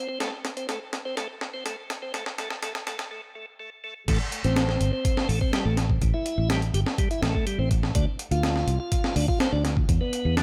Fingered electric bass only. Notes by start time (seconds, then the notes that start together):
4.08 A1
4.45 A1
4.81 G1
5.29 A1
5.65 A1
6.02 A1
6.38 A1
6.74 G1
7.22 A1
7.59 A1
7.95 D2
8.31 D2
8.67 C2
9.16 D2
9.53 D2
9.89 E2
10.25 E2